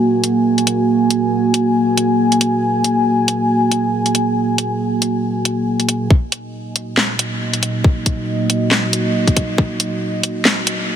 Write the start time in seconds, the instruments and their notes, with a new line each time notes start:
Already playing: analog synth pad A#3 F#4 G#5
0.24 closed hi-hat
0.58 closed hi-hat
0.67 closed hi-hat
1.10 closed hi-hat
1.54 closed hi-hat
1.98 closed hi-hat
2.32 closed hi-hat
2.41 closed hi-hat
2.84 closed hi-hat
3.28 closed hi-hat
3.71 closed hi-hat
4.06 closed hi-hat
4.15 closed hi-hat
4.58 closed hi-hat
5.02 closed hi-hat
5.45 closed hi-hat
5.80 closed hi-hat
5.89 closed hi-hat
6.10 analog synth pad A#3 F#4 D#5, kick
6.32 closed hi-hat
6.76 closed hi-hat
6.97 snare, clap
7.19 closed hi-hat
7.53 closed hi-hat
7.63 closed hi-hat
7.84 kick
8.06 kick, closed hi-hat
8.50 closed hi-hat
8.71 snare, clap
8.93 closed hi-hat
9.27 kick, closed hi-hat
9.37 kick, closed hi-hat
9.58 kick
9.80 closed hi-hat
10.23 closed hi-hat
10.45 snare, clap
10.67 closed hi-hat